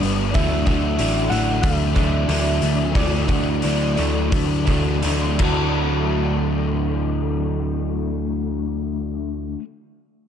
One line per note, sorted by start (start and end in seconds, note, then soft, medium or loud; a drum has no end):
0.00 0.33 G1 medium
0.00 0.33 D3 medium
0.00 0.33 G3 medium
0.00 0.33 B3 medium
0.00 0.35 B3 medium
0.00 0.35 D4 medium
0.00 0.38 D4 medium
0.00 0.37 D4 medium
0.00 0.38 F#4 medium
0.00 open hi-hat soft
0.04 0.35 G3 soft
0.04 0.34 B3 medium
0.34 0.65 D2 medium
0.34 0.98 D3 medium
0.34 1.31 E3 medium
0.34 0.68 F#3 medium
0.34 0.68 A3 loud
0.34 0.66 D4 loud
0.34 1.31 E5 loud
0.34 kick loud
0.34 open hi-hat medium
0.66 0.97 D2 medium
0.66 0.99 F#3 medium
0.66 0.99 A3 medium
0.66 1.00 D4 medium
0.66 2.32 F#4 medium
0.66 kick medium
0.66 open hi-hat medium
0.98 1.29 A1 medium
0.98 1.62 D3 medium
0.98 1.32 F#3 medium
0.98 1.31 A3 medium
0.98 1.30 D4 medium
0.98 2.29 E4 medium
0.98 open hi-hat medium
1.30 1.62 A1 medium
1.30 1.96 E3 medium
1.30 1.62 F#3 medium
1.30 1.63 A3 medium
1.30 1.63 D4 medium
1.30 1.63 F#5 loud
1.30 open hi-hat soft
1.62 2.25 D2 medium
1.62 2.27 D3 medium
1.62 1.97 F#3 loud
1.62 1.96 A3 loud
1.62 2.61 A3 medium
1.62 1.95 D4 loud
1.62 2.97 E5 loud
1.62 kick loud
1.62 open hi-hat medium
1.95 2.95 E3 medium
1.95 2.28 F#3 medium
1.95 2.28 A3 medium
1.95 2.29 D4 medium
1.95 kick medium
1.95 open hi-hat soft
2.28 2.60 D2 medium
2.28 2.94 D3 medium
2.28 2.63 F#3 medium
2.28 2.62 A3 medium
2.28 2.61 D4 medium
2.28 3.62 E4 medium
2.28 open hi-hat medium
2.61 2.93 D2 medium
2.61 2.94 F#3 medium
2.61 2.95 A3 medium
2.61 4.31 A3 medium
2.61 2.96 D4 medium
2.61 open hi-hat medium
2.95 3.27 D2 medium
2.95 3.62 D3 medium
2.95 3.96 E3 medium
2.95 3.29 F#3 loud
2.95 3.28 A3 loud
2.95 3.27 D4 loud
2.95 5.04 D5 loud
2.95 kick loud
2.95 open hi-hat medium
3.28 3.61 D2 medium
3.28 3.63 F#3 medium
3.28 3.64 A3 medium
3.28 3.64 D4 medium
3.28 5.04 F#4 medium
3.28 kick medium
3.28 open hi-hat soft
3.62 3.96 D2 medium
3.62 4.32 D3 medium
3.62 3.97 F#3 medium
3.62 3.96 A3 medium
3.62 3.95 D4 medium
3.62 5.02 E4 medium
3.62 open hi-hat medium
3.97 4.31 D2 medium
3.97 4.66 E3 medium
3.97 4.32 F#3 soft
3.97 4.33 A3 medium
3.97 4.33 D4 medium
3.97 open hi-hat soft
4.32 4.65 D2 medium
4.32 5.03 D3 medium
4.32 4.69 F#3 medium
4.32 5.39 A3 medium
4.32 4.68 A3 medium
4.32 4.67 D4 loud
4.32 kick loud
4.32 open hi-hat medium
4.67 5.01 D2 medium
4.67 5.37 E3 medium
4.67 5.04 F#3 medium
4.67 5.04 A3 medium
4.67 5.05 D4 medium
4.67 kick medium
4.67 open hi-hat medium
5.02 5.38 D2 medium
5.02 5.38 D3 medium
5.02 5.41 F#3 medium
5.02 5.41 A3 medium
5.02 5.42 D4 medium
5.02 5.40 E4 medium
5.02 open hi-hat medium
5.38 9.55 D2 medium
5.38 9.59 D3 medium
5.38 9.58 E3 medium
5.38 9.61 F#3 loud
5.38 9.59 A3 medium
5.38 9.61 E4 medium
5.38 9.62 F#4 loud
5.38 kick medium
5.38 crash medium
5.43 9.62 A3 medium
5.43 9.63 D4 medium
5.43 9.62 F#4 medium